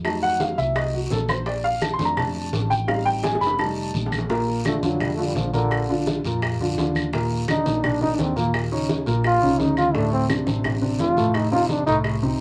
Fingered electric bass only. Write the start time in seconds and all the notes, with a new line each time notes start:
Already playing: F2
0.58 C2
1.11 A#1
2.00 F2
2.52 A1
3.41 F1
3.94 A#1
4.83 F2
5.35 A#1
6.24 F2
6.60 F2
6.78 D#2
7.66 A#1
8.19 D#2
9.07 A#1
9.42 C2
9.59 D2
10.47 A1
10.99 F1
11.87 C2
12.22 C2